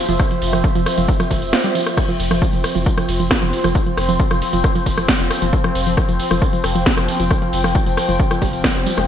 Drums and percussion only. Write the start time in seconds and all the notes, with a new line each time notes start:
0.09 closed hi-hat, tambourine
0.19 kick, cross-stick, closed hi-hat, ride, tambourine
0.31 closed hi-hat
0.42 open hi-hat, ride, tambourine
0.53 cross-stick, closed hi-hat, tambourine
0.64 kick, closed hi-hat, ride, tambourine
0.75 closed hi-hat, tambourine
0.86 cross-stick, open hi-hat, ride, tambourine
0.98 closed hi-hat, tambourine
1.08 kick, closed hi-hat, ride, tambourine
1.20 cross-stick, closed hi-hat, tambourine
1.31 kick, open hi-hat, ride, tambourine
1.42 closed hi-hat, tambourine
1.53 cross-stick, snare, closed hi-hat, ride, tambourine
1.64 closed hi-hat, tambourine
1.75 open hi-hat, ride, tambourine
1.87 cross-stick, closed hi-hat, tambourine
1.97 kick, cross-stick, closed hi-hat, crash, ride, tambourine
2.09 closed hi-hat
2.20 open hi-hat, ride, tambourine
2.31 cross-stick, open hi-hat, tambourine
2.42 kick, closed hi-hat, ride, tambourine
2.53 closed hi-hat, tambourine
2.64 cross-stick, open hi-hat, ride, tambourine
2.75 closed hi-hat, tambourine
2.86 kick, closed hi-hat, ride, tambourine
2.98 cross-stick, closed hi-hat, tambourine
3.09 open hi-hat, ride, tambourine
3.20 closed hi-hat, tambourine
3.31 kick, cross-stick, snare, closed hi-hat, ride, tambourine
3.42 closed hi-hat, tambourine
3.53 open hi-hat, ride, tambourine
3.64 cross-stick, closed hi-hat, tambourine
3.75 kick, closed hi-hat, ride, tambourine
3.86 closed hi-hat
3.97 cross-stick, open hi-hat, ride, tambourine
4.09 closed hi-hat, tambourine
4.20 kick, closed hi-hat, ride, tambourine
4.31 cross-stick, closed hi-hat, tambourine
4.42 open hi-hat, ride, tambourine
4.53 closed hi-hat, tambourine
4.64 kick, cross-stick, closed hi-hat, ride, tambourine
4.75 closed hi-hat, tambourine
4.86 kick, open hi-hat, ride, tambourine
4.98 cross-stick, closed hi-hat, tambourine
5.08 kick, snare, closed hi-hat, ride, tambourine
5.20 closed hi-hat, tambourine
5.31 cross-stick, open hi-hat, ride, tambourine
5.42 closed hi-hat, tambourine
5.53 kick, closed hi-hat, ride, tambourine
5.64 cross-stick, closed hi-hat
5.75 open hi-hat, ride, tambourine
5.86 open hi-hat, tambourine
5.97 kick, cross-stick, closed hi-hat, ride, tambourine
6.09 closed hi-hat, tambourine
6.20 open hi-hat, ride, tambourine
6.31 cross-stick, closed hi-hat, tambourine
6.42 kick, closed hi-hat, ride, tambourine
6.53 closed hi-hat, tambourine
6.64 cross-stick, open hi-hat, ride, tambourine
6.75 closed hi-hat, tambourine
6.86 kick, snare, closed hi-hat, ride, tambourine
6.97 cross-stick, closed hi-hat, tambourine
7.08 open hi-hat, ride, tambourine
7.20 closed hi-hat, tambourine
7.31 kick, cross-stick, closed hi-hat, ride, tambourine
7.42 closed hi-hat
7.53 open hi-hat, ride, tambourine
7.64 cross-stick, open hi-hat, tambourine
7.75 kick, closed hi-hat, ride, tambourine
7.86 closed hi-hat, tambourine
7.97 cross-stick, open hi-hat, ride, tambourine
8.09 closed hi-hat, tambourine
8.20 kick, closed hi-hat, ride, tambourine
8.31 cross-stick, closed hi-hat, tambourine
8.42 kick, open hi-hat, ride, tambourine
8.53 closed hi-hat, tambourine
8.64 kick, cross-stick, snare, closed hi-hat, ride, tambourine
8.75 closed hi-hat, tambourine
8.86 open hi-hat, ride, tambourine
8.98 cross-stick, closed hi-hat, tambourine